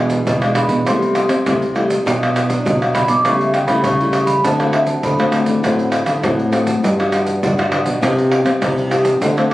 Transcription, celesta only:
0.00 0.53 G#5 medium
0.56 0.85 B5 medium
0.87 1.72 C6 medium
2.82 2.96 F#5 medium
2.94 3.09 B5 medium
3.09 3.24 D6 medium
3.42 3.56 E5 medium
3.54 3.69 G5 medium
3.67 3.83 B5 medium
3.84 4.26 C#6 medium
4.26 4.43 B5 loud
4.44 4.59 A5 medium
4.60 4.75 C5 soft
4.73 4.88 E5 medium
4.86 5.02 A5 medium
5.03 6.79 B5 medium
9.37 9.51 E6 medium
9.50 9.54 D6 loud

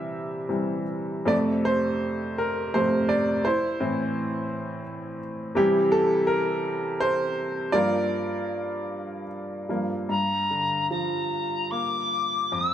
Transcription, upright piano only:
0.00 0.47 C3 soft
0.00 0.48 E3 soft
0.00 0.48 G3 medium
0.00 0.82 G4 medium
0.00 0.82 E5 medium
0.49 0.83 C3 soft
0.49 0.84 E3 soft
0.49 0.84 G3 soft
1.25 2.34 F2 soft
1.25 2.35 C3 soft
1.25 2.35 A3 soft
1.25 2.35 A4 medium
1.25 1.36 D5 medium
1.65 2.41 C5 medium
2.38 2.75 A#4 medium
2.74 3.06 F2 soft
2.74 3.06 C3 soft
2.74 3.06 A3 soft
2.74 3.07 C5 medium
3.09 3.46 D5 medium
3.45 5.18 E4 soft
3.45 5.17 C5 medium
3.80 4.81 A2 soft
3.80 4.81 E3 soft
3.80 4.81 C4 medium
5.55 7.69 C3 soft
5.55 7.70 E3 medium
5.55 7.70 G3 medium
5.55 6.62 E4 medium
5.55 5.94 G4 medium
5.92 6.30 A4 medium
6.27 7.03 A#4 medium
7.00 7.76 C5 medium
7.72 9.68 G2 soft
7.72 9.68 F3 soft
7.72 9.69 A#3 medium
7.72 9.24 A#4 medium
7.72 9.23 D5 medium
9.69 10.06 G2 soft
9.69 10.06 F3 soft
9.69 10.06 A#3 soft
10.09 12.48 G2 soft
10.51 12.08 D3 soft
10.91 12.48 F3 soft
11.72 12.50 A#3 soft
12.52 12.74 F2 soft

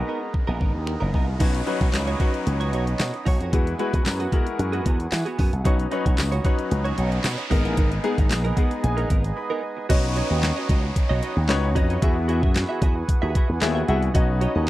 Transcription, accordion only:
0.00 1.38 G#3 medium
0.00 1.38 B3 medium
0.00 1.38 D#4 medium
0.00 1.38 A#4 medium
1.40 7.47 B3 medium
1.40 3.50 C#4 medium
1.40 3.51 D#4 medium
3.52 5.63 E3 medium
3.52 5.63 F#4 medium
3.52 5.63 G#4 medium
5.66 7.49 C#4 medium
5.66 9.86 D#4 medium
7.51 9.88 G#3 medium
7.51 9.88 B3 medium
7.51 9.88 G#4 medium
9.90 14.70 B3 medium
9.90 12.00 C#4 medium
9.90 12.00 D#4 medium
12.02 14.12 E3 medium
12.02 14.13 F#4 medium
12.02 14.13 G#4 medium
14.15 14.70 C#4 medium
14.15 14.70 D#4 medium

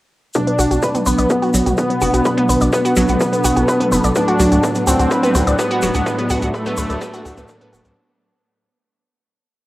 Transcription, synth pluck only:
0.35 0.40 B3 medium
0.47 0.52 B3 medium
0.58 0.62 F#4 loud
0.71 0.76 F#4 medium
0.82 0.88 B4 loud
0.95 1.00 B3 loud
1.06 1.14 B4 medium
1.18 1.22 D5 medium
1.30 1.36 B3 loud
1.42 1.47 F#4 loud
1.54 1.59 F#3 loud
1.66 1.71 F#4 medium
1.78 1.83 B3 medium
1.90 1.95 B3 medium
2.02 2.05 F#4 loud
2.14 2.19 F#4 medium
2.25 2.31 B4 loud
2.37 2.43 B3 loud
2.49 2.57 B4 medium
2.61 2.64 D5 medium
2.73 2.78 B3 loud
2.85 2.90 F#4 loud
2.97 3.02 F#3 loud
3.09 3.14 F#4 medium
3.21 3.26 B3 medium
3.33 3.38 B3 medium
3.44 3.48 F#4 loud
3.56 3.62 F#4 medium
3.68 3.74 B4 loud
3.80 3.86 B3 loud
3.92 4.00 B4 medium
4.04 4.07 D5 medium
4.16 4.21 B3 loud
4.28 4.33 F#4 loud
4.40 4.45 F#3 loud
4.52 4.57 F#4 medium
4.64 4.69 B3 medium
4.76 4.81 B3 medium
4.87 4.91 F#4 loud
5.00 5.05 F#4 medium
5.11 5.17 B4 loud
5.23 5.28 B3 loud
5.35 5.43 B4 medium
5.47 5.50 D5 medium
5.59 5.64 B3 loud
5.71 5.76 F#4 loud
5.83 5.88 F#3 loud
5.95 6.00 F#4 medium
6.06 6.12 B3 medium
6.19 6.24 B3 medium
6.30 6.33 F#4 loud
6.42 6.48 F#4 medium
6.54 6.59 B4 loud
6.66 6.71 B3 loud
6.78 6.86 B4 medium
6.90 6.93 D5 medium
7.01 7.07 B3 loud
7.14 7.19 F#4 loud
7.25 7.33 F#4 medium
7.37 7.43 B3 medium
7.49 7.55 D4 medium
7.61 7.69 B3 loud
7.73 7.76 F#4 medium
7.85 7.90 C4 medium

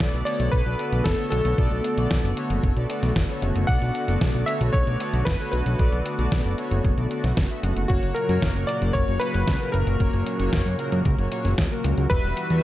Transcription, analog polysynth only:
0.00 0.23 B3 loud
0.00 0.24 A4 medium
0.00 0.23 D5 loud
0.27 0.63 B3 medium
0.27 0.63 A4 medium
0.27 0.63 C#5 loud
0.66 0.77 B3 medium
0.66 0.77 A4 medium
0.66 0.77 D5 medium
0.79 1.00 B3 medium
0.79 1.00 A4 medium
0.79 1.00 D5 loud
1.19 1.55 B3 medium
1.19 1.55 A4 medium
1.19 1.55 C#5 loud
1.58 1.95 B3 medium
1.58 1.95 A4 medium
1.58 1.95 D5 loud
1.98 2.34 B3 loud
1.98 2.34 A4 loud
1.98 2.34 D5 loud
2.37 2.73 B3 medium
2.37 2.73 A4 medium
2.37 2.73 C#5 loud
2.77 2.87 B3 medium
2.77 2.87 A4 medium
2.77 2.87 D5 medium
2.90 3.10 B3 medium
2.90 3.10 A4 medium
2.90 3.10 D5 loud
3.29 3.66 B3 medium
3.29 3.66 A4 medium
3.29 3.66 C#5 medium
3.69 4.05 B3 medium
3.69 4.05 A4 medium
3.69 4.05 D5 loud
4.08 4.44 B3 loud
4.08 4.44 A4 loud
4.08 4.44 D5 loud
4.48 4.84 B3 medium
4.48 4.84 A4 medium
4.48 4.84 C#5 loud
4.87 4.98 B3 medium
4.87 4.98 A4 medium
4.87 4.98 D5 medium
5.00 5.21 B3 loud
5.00 5.21 A4 medium
5.00 5.21 D5 loud
5.40 5.76 B3 medium
5.40 5.76 A4 medium
5.40 5.76 C#5 loud
5.79 6.16 B3 medium
5.79 6.16 A4 medium
5.79 6.16 D5 loud
6.19 6.55 B3 loud
6.19 6.55 A4 medium
6.19 6.55 D5 loud
6.58 6.95 B3 medium
6.58 6.94 A4 medium
6.58 6.94 C#5 loud
6.98 7.08 B3 medium
6.98 7.08 A4 medium
6.98 7.08 D5 medium
7.11 7.24 B3 medium
7.11 7.24 A4 medium
7.11 7.24 D5 medium
7.50 7.61 B3 medium
7.50 7.61 A4 medium
7.50 7.61 E5 medium
7.63 7.87 B3 medium
7.63 7.87 A4 medium
7.63 7.87 F#5 medium
7.90 8.26 A#3 medium
7.90 8.26 F#4 medium
7.90 8.26 C#5 loud
8.29 8.65 A#3 loud
8.29 8.65 F#4 medium
8.29 8.65 C#5 loud
8.69 9.05 A#3 medium
8.69 9.05 F#4 medium
8.69 9.05 A#4 loud
9.08 9.19 A#3 medium
9.08 9.19 F#4 medium
9.08 9.19 C#5 medium
9.21 9.42 A#3 medium
9.21 9.42 F#4 medium
9.21 9.42 C#5 loud
9.61 9.97 A#3 medium
9.61 9.97 F#4 medium
9.61 9.97 A#4 loud
10.00 10.37 A#3 medium
10.00 10.37 F#4 medium
10.00 10.37 C#5 loud
10.40 10.76 A#3 loud
10.40 10.76 F#4 medium
10.40 10.76 C#5 loud
10.79 11.15 A#3 medium
10.79 11.15 F#4 medium
10.79 11.15 A#4 loud
11.19 11.29 A#3 medium
11.19 11.29 F#4 medium
11.19 11.29 C#5 medium
11.32 11.52 A#3 loud
11.32 11.52 F#4 medium
11.32 11.52 C#5 loud
11.71 12.08 A#3 medium
11.71 12.08 F#4 medium
11.71 12.08 A#4 loud
12.11 12.47 G3 loud
12.11 12.47 F#4 medium
12.11 12.47 E5 loud
12.50 12.63 G3 loud
12.50 12.63 F#4 medium
12.50 12.63 E5 loud

